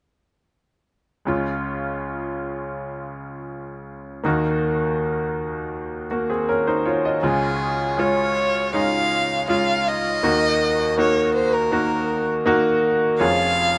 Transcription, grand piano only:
1.25 4.21 C#2 soft
1.25 4.21 C#3 soft
1.25 4.20 G#3 soft
1.25 4.21 C#4 soft
1.25 4.22 F4 soft
4.23 7.19 D#2 soft
4.23 7.19 D#3 soft
4.23 6.06 A#3 soft
4.23 6.07 D#4 soft
4.23 6.07 F#4 medium
6.11 6.29 A#3 soft
6.11 6.28 F#4 soft
6.30 6.48 C4 soft
6.30 6.47 G#4 soft
6.49 6.66 C#4 soft
6.49 6.66 A#4 medium
6.67 6.85 D#4 soft
6.67 6.85 C5 soft
6.86 7.04 F4 soft
6.86 7.03 C#5 soft
7.05 7.41 F#4 soft
7.05 7.40 D#5 soft
7.23 10.19 C#2 soft
7.23 10.19 C#3 soft
7.23 7.94 G#3 medium
7.23 7.95 C#4 soft
7.23 7.95 F4 medium
7.97 8.69 G#3 soft
7.97 8.70 C#4 soft
7.97 8.70 F4 medium
8.73 9.45 G#3 soft
8.73 9.45 C#4 soft
8.73 9.45 D#4 medium
9.48 10.19 G#3 medium
9.48 10.19 C#4 soft
9.48 10.20 F4 medium
10.23 13.16 D#2 soft
10.23 13.16 D#3 soft
10.23 10.94 A#3 medium
10.23 10.94 D#4 soft
10.23 10.95 F#4 medium
10.98 11.68 A#3 medium
10.98 11.69 D#4 soft
10.98 11.69 F#4 medium
11.71 12.42 A#3 soft
11.71 12.42 D#4 soft
11.71 12.43 F#4 medium
12.46 13.16 A#3 medium
12.46 13.16 D#4 medium
12.46 13.17 F#4 medium
13.20 13.78 F1 soft
13.20 13.78 F2 soft
13.20 13.78 C#4 medium
13.20 13.78 F4 medium
13.20 13.78 G#4 medium

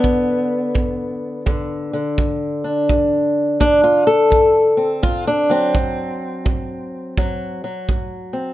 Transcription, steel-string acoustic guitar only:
0.00 1.46 D3 soft
0.00 1.95 B3 loud
0.04 0.70 G2 medium
0.75 1.41 G2 medium
1.46 2.13 G2 medium
1.46 1.92 D3 soft
1.93 5.75 D3 soft
2.18 2.84 G2 medium
2.64 3.61 D4 medium
2.90 3.56 D2 medium
3.60 4.27 D2 medium
3.60 3.83 D4 loud
3.84 4.06 F4 medium
4.07 5.03 A4 medium
4.30 4.97 D2 medium
4.77 5.50 C4 soft
5.03 5.69 D2 medium
5.03 5.27 F4 medium
5.27 5.51 D4 medium
5.50 7.17 F#3 soft
5.50 7.65 C4 loud
5.75 6.41 D2 medium
6.45 7.12 D2 medium
7.18 7.83 D2 medium
7.18 7.63 F#3 medium
7.64 8.54 F#3 soft
7.89 8.54 D2 medium
8.33 8.54 C4 soft

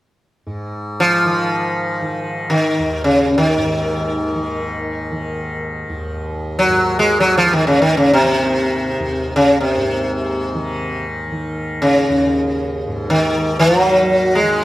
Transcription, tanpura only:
0.46 3.56 G#2 soft
1.25 2.02 D#3 soft
2.02 4.34 D#3 soft
2.79 5.89 D#2 soft
3.57 6.67 G#2 soft
4.34 5.11 D#3 soft
5.11 7.45 D#3 soft
5.89 8.99 D#2 soft
6.67 9.76 G#2 soft
7.45 8.23 D#3 soft
8.23 10.54 D#3 soft
8.99 12.08 D#2 soft
9.77 12.86 G#2 soft
10.54 11.32 D#3 soft
11.32 13.65 D#3 soft
12.09 14.64 D#2 soft
12.87 14.64 G#2 medium
13.65 14.42 D#3 medium
14.42 14.64 D#3 medium

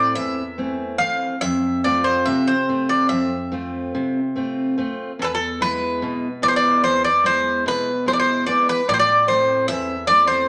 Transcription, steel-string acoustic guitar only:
0.00 0.13 A2 medium
0.00 0.41 A3 soft
0.00 0.41 C4 soft
0.00 0.41 E4 soft
0.16 0.98 E2 medium
0.58 1.26 E3 medium
0.58 0.99 A3 soft
0.58 1.00 C4 soft
1.00 1.34 A3 soft
1.00 1.35 C4 soft
1.42 2.24 F2 medium
1.85 2.52 A3 medium
1.85 2.52 C4 soft
1.85 2.53 F4 medium
2.27 3.08 C3 medium
2.69 3.36 A3 medium
2.69 3.36 C4 soft
2.69 3.36 F4 medium
3.10 3.91 F2 medium
3.52 4.19 A3 medium
3.52 4.19 C4 soft
3.52 4.19 F4 soft
3.95 4.75 C3 medium
4.36 4.77 A3 soft
4.36 4.77 C4 soft
4.36 4.77 F4 soft
4.78 5.11 A3 medium
4.78 5.11 C4 soft
4.78 5.11 F4 medium
5.19 5.99 E2 medium
5.61 6.27 G#3 medium
5.61 6.27 B3 soft
5.61 6.27 E4 soft
6.02 6.82 B2 medium
6.42 7.08 G#3 soft
6.42 7.08 B3 soft
6.42 7.09 E4 medium
6.84 7.64 E2 medium
7.24 7.90 G#3 medium
7.24 7.90 E4 medium
7.66 8.45 B2 medium
8.06 8.46 G#3 soft
8.06 8.47 E4 soft
8.47 8.80 G#3 soft
8.47 8.80 B3 soft
8.47 8.81 E4 medium
8.88 9.67 A2 medium
9.29 9.94 A3 medium
9.29 9.94 C4 soft
9.29 9.94 E4 soft
9.69 10.47 E2 medium
10.09 10.48 A3 medium
10.09 10.48 C4 soft
10.09 10.48 E4 medium

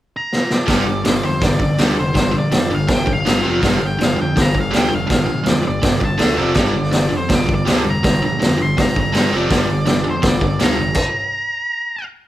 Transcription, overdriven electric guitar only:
0.66 0.84 G2 medium
0.66 0.84 D3 loud
0.66 0.85 G3 medium
0.87 1.03 G2 medium
0.87 1.03 D3 medium
1.05 1.21 G2 medium
1.05 1.21 D3 medium
1.23 1.40 G2 medium
1.23 1.40 D3 medium
1.42 1.58 G2 medium
1.42 1.58 D3 medium
1.59 1.76 G2 medium
1.59 1.76 D3 medium
1.78 1.95 G2 loud
1.78 1.95 D3 loud
1.78 1.96 G3 medium
1.96 2.13 G2 medium
1.96 2.13 D3 medium
2.14 2.31 G2 medium
2.14 2.31 D3 medium
2.32 2.49 G2 medium
2.32 2.49 D3 medium
2.52 2.69 G2 medium
2.52 2.69 D3 medium
2.71 2.87 G2 medium
2.71 2.87 D3 medium
2.88 3.05 G2 medium
2.88 3.05 D3 medium
3.06 3.23 G2 medium
3.06 3.23 D3 medium
3.25 3.42 G2 medium
3.25 3.43 D3 medium
3.25 3.43 G3 medium
3.43 3.60 F2 medium
3.43 3.61 C3 loud
3.43 3.61 F3 medium
3.61 3.78 G2 medium
3.61 3.79 D3 loud
3.61 3.80 G3 loud
3.80 3.97 G2 medium
3.80 3.97 D3 medium
3.98 4.15 G2 medium
3.98 4.15 D3 medium
4.16 4.33 G2 medium
4.16 4.33 D3 medium
4.36 4.52 G2 medium
4.36 4.52 D3 medium
4.55 4.70 G2 medium
4.55 4.70 D3 medium
4.71 4.88 G2 medium
4.71 4.89 D3 medium
4.71 4.90 G3 medium
4.90 5.06 G2 medium
4.90 5.06 D3 medium
5.07 5.25 G2 medium
5.07 5.25 D3 medium
5.26 5.44 G2 medium
5.26 5.44 D3 medium
5.45 5.62 G2 medium
5.45 5.62 D3 medium
5.63 5.80 G2 medium
5.63 5.81 D3 medium
5.82 5.99 G2 medium
5.82 5.99 D3 medium
6.00 6.17 G2 medium
6.00 6.17 D3 medium
6.18 6.36 D3 medium
6.18 6.37 A3 medium
6.18 6.37 D4 medium
6.36 6.54 F2 medium
6.36 6.55 C3 medium
6.36 6.55 F3 loud
6.54 6.73 G2 medium
6.54 6.73 D3 loud
6.54 6.73 G3 loud
6.74 6.90 G2 medium
6.74 6.90 D3 medium
6.91 7.08 G2 medium
6.91 7.09 D3 medium
7.09 7.27 G2 medium
7.09 7.27 D3 medium
7.29 7.45 G2 medium
7.29 7.46 D3 medium
7.46 7.64 G2 medium
7.46 7.64 D3 medium
7.66 7.83 G2 medium
7.66 7.83 D3 loud
7.66 7.84 G3 medium
7.84 8.01 G2 medium
7.84 8.01 D3 medium
8.03 8.20 G2 medium
8.03 8.20 D3 medium
8.22 8.38 G2 medium
8.22 8.38 D3 medium
8.40 8.56 G2 medium
8.40 8.57 D3 medium
8.58 8.75 G2 medium
8.58 8.75 D3 medium
8.77 8.93 G2 medium
8.77 8.93 D3 medium
8.96 9.11 G2 medium
8.96 9.12 D3 medium
9.12 9.30 G2 medium
9.12 9.30 D3 medium
9.12 9.31 G3 loud
9.31 9.48 F2 medium
9.31 9.49 C3 medium
9.31 9.49 F3 loud
9.50 9.66 G2 medium
9.50 9.66 D3 loud
9.50 9.68 G3 loud
9.67 9.84 G2 medium
9.67 9.84 D3 medium
9.86 10.03 G2 medium
9.86 10.03 D3 medium
10.04 10.21 G2 medium
10.04 10.21 D3 medium
10.22 10.39 G2 medium
10.22 10.39 D3 medium
10.41 10.58 G2 medium
10.41 10.58 D3 medium
10.60 10.77 G2 medium
10.60 10.77 D3 medium
10.60 10.77 G3 medium
10.78 10.94 G2 medium
10.78 10.94 D3 medium

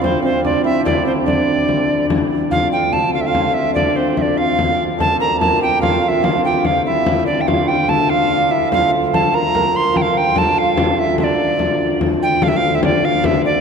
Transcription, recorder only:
0.03 0.22 C5 medium
0.24 0.43 C5 medium
0.45 0.64 D5 medium
0.65 0.84 E5 loud
0.86 1.05 D5 medium
1.06 1.12 C5 medium
1.27 2.06 D5 medium
2.51 2.71 F5 medium
2.72 2.94 G5 medium
2.93 3.13 A5 medium
3.14 3.22 F5 medium
3.21 3.28 E5 medium
3.27 3.55 F5 medium
3.54 3.74 E5 medium
3.74 3.98 D5 medium
3.96 4.19 C5 medium
4.17 4.23 E5 medium
4.22 4.39 D5 medium
4.37 4.84 F5 medium
5.00 5.19 A5 medium
5.20 5.39 A#5 medium
5.40 5.60 A5 medium
5.62 5.81 G5 medium
5.82 6.03 F5 medium
6.03 6.09 F5 medium
6.08 6.26 E5 medium
6.24 6.44 F5 medium
6.45 6.67 G5 medium
6.66 6.85 F5 medium
6.86 7.24 E5 medium
7.26 7.43 D5 medium
7.41 7.49 G5 medium
7.47 7.69 F5 medium
7.68 7.91 G5 medium
7.89 8.11 A5 medium
8.10 8.53 F5 loud
8.51 8.71 E5 medium
8.72 8.91 F5 medium
9.14 9.36 A5 medium
9.35 9.78 A#5 loud
9.76 9.98 C6 loud
9.97 10.03 G5 medium
10.02 10.19 F5 medium
10.17 10.40 G5 medium
10.38 10.60 A5 medium
10.58 11.01 F5 medium
10.99 11.19 E5 loud
11.20 11.97 D5 medium
11.20 11.25 E5 medium
12.23 12.45 G5 medium
12.43 12.50 F5 loud
12.48 12.58 E5 medium
12.56 12.77 F5 loud
12.75 12.84 E5 medium
12.84 13.06 D5 medium
13.05 13.27 F5 loud
13.25 13.45 E5 loud
13.45 13.61 D5 loud

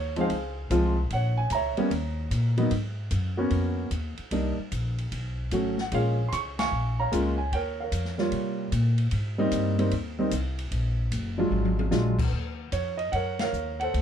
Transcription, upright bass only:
0.00 0.29 D#2 medium
0.29 0.69 C#2 medium
0.70 1.09 C2 medium
1.11 1.50 A#1 medium
1.50 1.75 C#2 medium
1.78 muted upright bass stroke soft
1.90 2.30 D#2 medium
2.31 2.70 A#2 medium
2.71 3.10 G#2 medium
3.11 3.50 F#2 loud
3.51 3.90 F2 medium
3.91 4.16 D#2 medium
4.19 muted upright bass stroke soft
4.31 4.56 C2 medium
4.58 muted upright bass stroke soft
4.72 5.11 A#1 medium
5.12 5.51 B1 medium
5.52 5.91 G#1 medium
5.92 6.31 A#1 medium
6.32 6.71 C#2 medium
6.71 7.11 A#1 medium
7.12 7.51 C#2 medium
7.52 7.91 D#2 medium
7.92 8.31 F2 medium
8.31 8.71 C3 medium
8.72 9.11 A#2 medium
9.12 9.51 G#2 medium
9.51 9.91 G2 medium
9.92 10.31 D#2 medium
10.32 10.71 C2 medium
10.71 11.11 A#1 medium
11.11 11.50 F#1 medium
11.50 11.90 G#1 medium
11.92 12.31 A#1 medium
12.32 12.71 D#2 medium
12.72 13.11 F2 medium
13.12 13.52 F#2 medium
13.53 13.92 D#2 medium
13.94 14.02 D2 medium

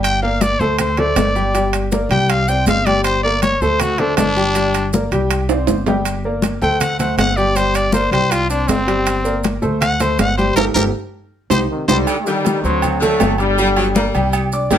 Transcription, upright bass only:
0.00 0.54 G1 medium
0.59 1.12 D2 loud
1.16 2.04 G1 medium
2.09 2.62 C2 loud
2.66 3.55 G1 loud
3.61 4.13 D2 medium
4.18 5.06 G1 medium
5.11 5.64 C2 medium
5.67 6.56 G1 medium
6.62 7.14 D2 medium
7.17 8.06 G1 medium
8.11 8.64 C2 medium
8.69 9.57 G1 medium
9.63 10.15 D2 medium
10.18 10.54 G1 loud
10.56 10.70 G1 medium
10.75 10.89 G1 loud
11.50 11.64 C2 loud
11.88 12.02 C2 loud
12.64 13.16 D2 medium
13.21 14.08 G1 medium
14.15 14.67 C2 medium
14.70 14.78 G1 loud

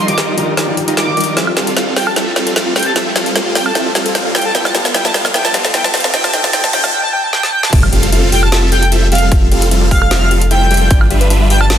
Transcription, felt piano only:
0.07 0.16 D#3 medium
0.07 0.17 D4 medium
0.07 0.17 F4 medium
0.07 0.17 G4 medium
0.37 0.65 D#3 loud
0.37 0.65 D4 medium
0.37 0.66 F4 medium
0.37 0.66 G4 loud
0.67 0.75 D#3 medium
0.67 0.75 D4 medium
0.67 0.76 F4 medium
0.67 0.76 G4 loud
0.76 1.05 D#3 medium
0.76 1.05 D4 medium
0.76 1.05 F4 medium
0.76 1.06 G4 medium
1.07 1.34 D#3 medium
1.07 1.35 D4 medium
1.07 1.35 F4 medium
1.07 1.35 G4 medium

